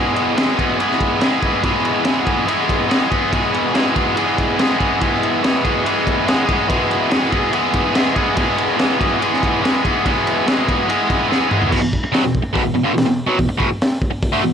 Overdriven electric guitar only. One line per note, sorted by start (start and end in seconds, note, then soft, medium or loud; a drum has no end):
0.00 0.36 E2 medium
0.00 0.35 B2 medium
0.00 0.38 E3 loud
0.00 0.37 G#3 medium
0.00 0.38 B3 loud
0.00 0.38 G#4 medium
0.36 1.62 E2 medium
0.36 0.79 B2 medium
0.36 0.60 E3 loud
0.36 0.58 G#3 medium
0.36 0.57 B3 medium
0.36 0.57 G#4 medium
0.57 0.78 E3 medium
0.57 0.78 G#3 medium
0.57 0.81 B3 medium
0.57 0.81 G#4 medium
0.79 1.20 E3 medium
0.79 1.21 G#3 medium
0.79 1.22 B3 medium
0.79 1.23 G#4 medium
1.20 1.43 E3 medium
1.20 1.42 G#3 medium
1.20 1.42 B3 medium
1.20 1.40 G#4 medium
1.41 1.64 E3 medium
1.41 1.64 G#3 medium
1.41 1.65 B3 medium
1.41 1.65 G#4 medium
1.62 2.04 E2 medium
1.62 2.05 B2 medium
1.62 2.06 E3 loud
1.62 2.07 G#3 loud
1.62 2.07 B3 loud
1.62 2.07 G#4 medium
2.04 3.32 E2 medium
2.04 2.48 B2 loud
2.04 2.28 E3 loud
2.04 2.27 G#3 loud
2.04 2.26 B3 medium
2.04 2.25 G#4 loud
2.25 2.46 E3 medium
2.25 2.47 G#3 medium
2.25 2.48 B3 medium
2.25 2.50 G#4 medium
2.47 2.87 E3 medium
2.47 2.88 G#3 medium
2.47 2.89 B3 medium
2.47 2.91 G#4 medium
2.88 3.13 E3 medium
2.88 3.12 G#3 medium
2.88 3.11 B3 medium
2.88 3.10 G#4 medium
3.10 3.32 E3 medium
3.10 3.33 G#3 medium
3.10 3.34 B3 medium
3.10 3.34 G#4 medium
3.32 3.73 E2 medium
3.32 3.73 B2 medium
3.32 3.74 E3 loud
3.32 3.75 G#3 loud
3.32 3.76 B3 medium
3.32 3.76 G#4 loud
3.74 4.99 E2 medium
3.74 4.17 B2 medium
3.74 3.98 E3 loud
3.74 3.97 G#3 loud
3.74 3.96 B3 loud
3.74 3.95 G#4 loud
3.95 4.15 E3 medium
3.95 4.17 G#3 medium
3.95 4.17 B3 medium
3.95 4.19 G#4 medium
4.15 4.58 E3 medium
4.15 4.59 G#3 medium
4.15 4.60 B3 medium
4.15 4.60 G#4 medium
4.58 4.83 E3 medium
4.58 4.81 G#3 medium
4.58 4.81 B3 medium
4.58 4.79 G#4 medium
4.79 5.01 E3 medium
4.79 5.02 G#3 medium
4.79 5.02 B3 medium
4.79 5.02 G#4 medium
5.00 5.42 E2 medium
5.00 5.42 B2 medium
5.00 5.43 E3 loud
5.00 5.44 G#3 loud
5.00 5.45 B3 loud
5.00 5.45 G#4 medium
5.42 6.67 E2 loud
5.42 5.85 B2 medium
5.42 5.66 E3 loud
5.42 5.65 G#3 medium
5.42 5.64 B3 loud
5.42 5.63 G#4 loud
5.64 5.83 E3 medium
5.64 5.85 G#3 medium
5.64 5.86 B3 medium
5.64 5.87 G#4 medium
5.84 6.25 E3 medium
5.84 6.27 G#3 medium
5.84 6.28 B3 medium
5.84 6.29 G#4 medium
6.25 6.48 E3 medium
6.25 6.48 G#3 medium
6.25 6.46 B3 medium
6.25 6.45 G#4 medium
6.45 6.68 E3 medium
6.45 6.68 G#3 medium
6.45 6.70 B3 medium
6.45 6.70 G#4 medium
6.67 7.09 E2 medium
6.67 7.09 B2 medium
6.67 7.10 E3 medium
6.67 7.11 G#3 loud
6.67 7.11 B3 loud
6.67 7.12 G#4 medium
7.09 8.35 E2 medium
7.09 7.52 B2 loud
7.09 7.33 E3 loud
7.09 7.32 G#3 loud
7.09 7.31 B3 loud
7.09 7.29 G#4 loud
7.30 7.51 E3 medium
7.30 7.53 G#3 medium
7.30 7.54 B3 medium
7.30 7.55 G#4 medium
7.51 7.92 E3 medium
7.51 7.94 G#3 medium
7.51 7.95 B3 medium
7.51 7.96 G#4 medium
7.93 8.18 E3 medium
7.93 8.16 G#3 medium
7.93 8.16 B3 medium
7.93 8.15 G#4 medium
8.15 8.37 E3 medium
8.15 8.37 G#3 medium
8.15 8.38 B3 medium
8.15 8.38 G#4 medium
8.36 8.77 E2 medium
8.36 8.77 B2 medium
8.36 8.79 E3 loud
8.36 8.79 G#3 medium
8.36 8.79 B3 loud
8.36 8.80 G#4 loud
8.77 10.04 E2 loud
8.77 9.20 B2 medium
8.77 9.01 E3 loud
8.77 9.00 G#3 medium
8.77 8.99 B3 loud
8.77 8.98 G#4 loud
8.98 9.19 E3 medium
8.98 9.21 G#3 medium
8.98 9.22 B3 medium
8.98 9.22 G#4 medium
9.19 9.61 E3 medium
9.19 9.62 G#3 medium
9.19 9.63 B3 medium
9.19 9.64 G#4 medium
9.62 9.86 E3 medium
9.62 9.85 G#3 medium
9.62 9.84 B3 medium
9.62 9.83 G#4 medium
9.83 10.04 E3 medium
9.83 10.04 G#3 medium
9.83 10.05 B3 medium
9.83 10.06 G#4 medium
10.04 10.44 E2 medium
10.04 10.45 B2 medium
10.04 10.46 E3 loud
10.04 10.46 G#3 loud
10.04 10.47 B3 loud
10.04 10.48 G#4 medium
10.46 10.88 E2 medium
10.46 10.88 B2 medium
10.46 10.70 E3 medium
10.46 10.68 G#3 loud
10.46 10.67 B3 medium
10.46 10.66 G#4 loud
10.68 10.86 E3 medium
10.68 10.87 G#3 medium
10.68 10.88 B3 medium
10.68 10.89 G#4 medium
10.87 11.28 E3 medium
10.87 11.29 G#3 medium
10.87 11.30 B3 medium
10.87 11.30 G#4 medium
11.29 11.51 E3 medium
11.29 11.50 G#3 medium
11.29 11.49 B3 medium
11.29 11.48 G#4 medium
11.49 11.71 E3 medium
11.49 11.71 G#3 medium
11.49 11.70 B3 medium
11.49 11.69 G#4 medium
11.70 11.80 E2 loud
11.70 11.80 B2 loud
11.81 11.98 E2 medium
11.81 11.98 B2 medium
12.04 muted overdriven electric guitar stroke medium
12.12 12.23 B2 loud
12.12 12.23 F#3 loud
12.23 12.40 E2 medium
12.23 12.40 B2 medium
12.42 muted overdriven electric guitar stroke medium
12.53 12.63 E2 medium
12.53 12.63 B2 loud
12.64 12.74 E2 medium
12.64 12.74 B2 medium
12.75 12.84 E2 medium
12.75 12.85 B2 medium
12.84 12.94 G2 medium
12.84 12.94 D3 medium
12.94 13.04 E2 medium
12.94 13.05 B2 medium
13.06 13.23 E2 medium
13.06 13.24 B2 medium
13.27 13.36 B2 medium
13.27 13.38 F#3 medium
13.37 13.48 E2 medium
13.37 13.48 B2 medium
13.49 muted overdriven electric guitar stroke medium
13.58 13.68 E2 medium
13.58 13.69 B2 loud
14.11 muted overdriven electric guitar stroke medium
14.32 14.42 D3 medium
14.32 14.42 A3 loud
14.42 14.53 E2 medium
14.42 14.53 B2 medium